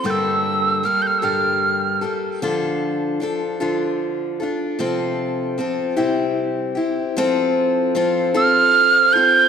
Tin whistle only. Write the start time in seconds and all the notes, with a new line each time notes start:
0.06 G6
0.10 E6
0.85 F6
1.02 G6
1.07 F6
1.19 E6
1.24 F6
8.37 F6
9.13 G6